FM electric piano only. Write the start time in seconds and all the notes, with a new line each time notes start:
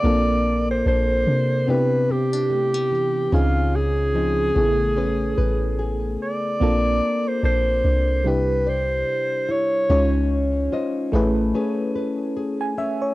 0.03 A#3 C4 D4 F4 A4
1.67 B3 C4 D4 E4 G4
3.32 C4 C#4 D#4 F4 G#4
4.54 C#3 A3 B3 E4 G#4
6.60 A#3 C4 D4 F4 A4
8.24 C3 G3 D4 E4 G4
9.90 G#3 C#4 D#4 F4 C#5
11.12 A3 C#4 E4 G#4 B4
12.61 G#5
12.78 E5
13.02 C#5